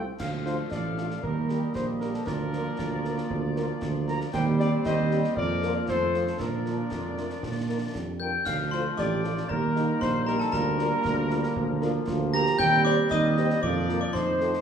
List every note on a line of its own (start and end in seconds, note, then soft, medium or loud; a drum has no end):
0.00 0.11 C2 medium
0.19 0.63 D2 medium
0.19 1.19 F3 medium
0.19 1.19 A3 medium
0.19 0.68 A4 medium
0.19 0.68 F5 medium
0.19 0.32 F5 medium
0.19 concert bass drum medium
0.19 snare medium
0.19 crash medium
0.46 0.55 A3 medium
0.46 0.55 D4 medium
0.46 0.55 F4 medium
0.46 0.57 C5 medium
0.46 snare medium
0.71 1.15 A1 medium
0.71 1.20 A4 medium
0.71 1.19 D5 medium
0.71 1.19 F5 medium
0.71 concert bass drum medium
0.71 snare medium
0.97 1.07 A3 medium
0.97 1.06 D4 medium
0.97 1.06 F4 medium
0.97 snare medium
1.11 snare medium
1.23 1.66 D#2 medium
1.23 2.26 G3 medium
1.23 2.25 A#3 medium
1.23 2.27 G4 medium
1.23 1.71 A#4 medium
1.23 2.27 D#5 medium
1.23 concert bass drum medium
1.49 1.58 G3 medium
1.49 1.58 A#3 medium
1.49 1.58 G4 medium
1.49 snare medium
1.75 2.18 A#1 medium
1.75 1.86 C5 medium
1.75 concert bass drum medium
1.75 snare medium
2.00 2.10 G3 medium
2.00 2.10 A#3 medium
2.00 2.10 G4 medium
2.00 2.15 A#4 medium
2.00 snare soft
2.14 2.25 A4 medium
2.14 snare medium
2.26 2.70 D2 medium
2.26 4.29 F3 medium
2.26 4.29 A#3 medium
2.26 4.29 F4 medium
2.26 3.77 A#4 loud
2.26 4.29 D5 medium
2.26 concert bass drum medium
2.26 snare medium
2.53 2.62 F3 medium
2.53 2.62 A#3 medium
2.53 2.62 A#4 medium
2.53 snare medium
2.79 3.22 D2 medium
2.79 concert bass drum medium
2.79 snare medium
3.04 3.14 F3 medium
3.04 3.14 A#3 medium
3.04 3.14 A#4 medium
3.04 snare medium
3.18 snare medium
3.30 3.73 D2 medium
3.30 concert bass drum medium
3.56 3.65 F3 medium
3.56 3.65 A#3 medium
3.56 3.65 A#4 medium
3.56 snare medium
3.82 4.25 D2 medium
3.82 concert bass drum medium
3.82 snare medium
4.07 4.17 F3 medium
4.07 4.17 A#3 medium
4.07 4.17 A#4 medium
4.07 4.19 A#5 loud
4.07 snare medium
4.21 snare medium
4.33 4.77 D#2 loud
4.33 5.33 G3 medium
4.33 5.37 C4 medium
4.33 4.81 G4 medium
4.33 4.81 C5 medium
4.33 4.45 G5 loud
4.33 concert bass drum medium
4.33 snare medium
4.33 crash soft
4.59 4.69 G3 medium
4.59 4.69 C4 medium
4.59 4.69 G4 medium
4.59 4.71 D5 loud
4.59 snare medium
4.85 5.24 D#2 loud
4.85 5.33 G4 loud
4.85 5.33 C5 loud
4.85 5.33 D#5 loud
4.85 concert bass drum medium
4.85 snare medium
5.11 5.20 G3 medium
5.11 5.20 C4 medium
5.11 5.20 G4 medium
5.11 snare medium
5.24 snare medium
5.36 5.80 F2 loud
5.36 6.39 F3 medium
5.36 5.88 A#3 medium
5.36 5.88 F4 medium
5.36 5.84 A#4 medium
5.36 5.73 D5 loud
5.36 concert bass drum medium
5.62 5.72 F3 medium
5.62 5.72 A#3 medium
5.62 5.72 A#4 medium
5.62 snare medium
5.76 5.81 D5 medium
5.88 6.32 F2 medium
5.88 6.36 A3 medium
5.88 6.36 F4 medium
5.88 6.36 A4 medium
5.88 6.36 C5 loud
5.88 concert bass drum medium
5.88 snare medium
6.14 6.24 F3 medium
6.14 6.23 C4 medium
6.14 6.24 A4 medium
6.14 snare medium
6.27 snare medium
6.40 6.83 A#2 medium
6.40 8.17 F3 medium
6.40 8.21 D4 medium
6.40 8.04 F4 medium
6.40 7.91 A#4 medium
6.40 8.04 D5 medium
6.40 concert bass drum medium
6.40 snare medium
6.66 6.75 F3 medium
6.66 6.75 D4 medium
6.66 6.75 A#4 medium
6.66 snare medium
6.91 7.34 F2 medium
6.91 7.16 D4 medium
6.91 concert bass drum medium
6.91 snare medium
7.17 7.27 F3 medium
7.17 7.29 A3 medium
7.17 7.27 D4 medium
7.17 7.27 A#4 medium
7.17 snare medium
7.30 snare medium
7.43 7.86 A#2 medium
7.43 7.96 A#3 medium
7.43 concert bass drum medium
7.43 snare medium
7.68 7.78 F3 medium
7.68 7.78 D4 medium
7.68 7.78 A#4 medium
7.94 8.38 F2 medium
7.94 8.45 G3 medium
7.94 concert bass drum medium
7.94 snare medium
8.20 8.30 F3 medium
8.20 8.30 D4 soft
8.20 8.29 A#4 medium
8.20 8.32 G5 medium
8.20 8.45 G5 medium
8.20 8.44 G6 medium
8.45 8.89 D2 medium
8.45 9.46 F3 medium
8.45 9.46 A3 medium
8.45 8.99 D4 medium
8.45 8.58 F5 medium
8.45 8.72 F5 medium
8.45 8.70 F6 medium
8.45 concert bass drum medium
8.45 snare medium
8.45 crash medium
8.71 8.81 F3 medium
8.71 8.81 F4 medium
8.71 8.82 A4 medium
8.71 8.84 C5 medium
8.71 8.96 C6 medium
8.71 snare medium
8.97 9.41 A1 medium
8.97 9.25 G4 loud
8.97 9.46 D5 medium
8.97 9.46 D6 medium
8.97 concert bass drum medium
8.97 snare medium
9.23 9.33 F3 medium
9.23 9.49 F4 medium
9.23 9.33 F4 medium
9.23 9.33 A4 medium
9.23 snare medium
9.37 snare medium
9.49 9.92 D#2 medium
9.49 11.56 G3 medium
9.49 10.52 A#3 medium
9.49 9.61 G4 medium
9.49 10.01 A#4 medium
9.49 9.98 A#4 medium
9.49 9.97 A#5 medium
9.49 concert bass drum medium
9.75 9.85 A#3 medium
9.75 10.49 D#4 medium
9.75 9.85 D#4 medium
9.75 9.85 G4 medium
9.75 snare medium
10.01 10.44 A#1 medium
10.01 10.25 C5 loud
10.01 10.27 C5 medium
10.01 10.25 C6 medium
10.01 concert bass drum medium
10.01 snare medium
10.26 10.36 A#3 medium
10.26 10.36 D#4 medium
10.26 10.36 G4 medium
10.26 10.33 A#4 loud
10.26 10.39 A#4 medium
10.26 10.39 A#5 medium
10.26 snare medium
10.39 10.52 A4 medium
10.39 10.55 A4 medium
10.39 10.52 A5 medium
10.39 snare medium
10.52 10.92 D2 medium
10.52 12.55 A#3 medium
10.52 10.64 F4 medium
10.52 12.07 A#4 loud
10.52 12.08 A#4 loud
10.52 12.04 A#5 medium
10.52 concert bass drum medium
10.52 snare medium
10.78 10.87 A#3 medium
10.78 11.52 D4 loud
10.78 10.88 F4 medium
10.78 10.88 A#4 medium
10.78 snare medium
11.05 11.48 D2 medium
11.05 concert bass drum medium
11.05 snare medium
11.29 11.39 A#3 medium
11.29 11.39 F4 medium
11.29 11.39 A#4 medium
11.29 snare medium
11.43 snare medium
11.56 11.99 D2 medium
11.56 12.59 F3 medium
11.56 11.67 A#3 medium
11.56 concert bass drum medium
11.81 11.91 A#3 medium
11.81 11.93 D4 loud
11.81 11.91 F4 medium
11.81 11.91 A#4 medium
11.81 snare medium
12.06 12.51 D2 loud
12.06 12.18 F4 loud
12.06 concert bass drum medium
12.06 snare medium
12.33 12.43 A#3 medium
12.33 12.43 F4 medium
12.33 13.07 G4 loud
12.33 12.43 A#4 medium
12.33 12.58 A#5 loud
12.33 12.45 A#5 loud
12.33 12.58 A#6 loud
12.33 snare medium
12.46 snare medium
12.58 13.03 D#2 loud
12.58 13.62 G3 medium
12.58 13.59 C4 medium
12.58 12.83 G5 loud
12.58 12.83 G6 loud
12.58 concert bass drum medium
12.58 snare medium
12.58 crash soft
12.85 12.94 G3 medium
12.85 12.94 G4 medium
12.85 12.94 C5 medium
12.85 12.96 D5 loud
12.85 12.97 D5 loud
12.85 13.09 D6 loud
12.85 snare medium
13.10 13.54 D#2 loud
13.10 13.38 D#4 loud
13.10 13.64 D#5 loud
13.10 13.59 D#5 loud
13.10 13.59 D#6 medium
13.10 concert bass drum medium
13.10 snare medium
13.36 13.47 G3 medium
13.36 13.61 G4 medium
13.36 13.47 G4 medium
13.36 13.47 C5 medium
13.36 snare medium
13.50 snare medium
13.62 14.06 F2 loud
13.62 14.61 F3 medium
13.62 14.14 A#3 medium
13.62 14.15 F4 medium
13.62 14.00 D5 loud
13.62 14.01 D5 loud
13.62 13.99 D6 medium
13.62 concert bass drum medium
13.88 13.98 A#3 medium
13.88 13.98 F4 medium
13.88 13.98 A#4 medium
13.88 snare medium
14.01 14.13 D5 medium
14.01 14.14 D5 medium
14.01 14.13 D6 medium
14.13 14.58 F2 medium
14.13 14.61 A3 medium
14.13 14.61 D#4 medium
14.13 14.61 C5 loud
14.13 14.61 C6 medium
14.13 concert bass drum medium
14.13 snare medium
14.40 14.50 C4 medium
14.40 14.50 F4 medium
14.40 14.50 A4 medium
14.40 snare medium
14.54 snare medium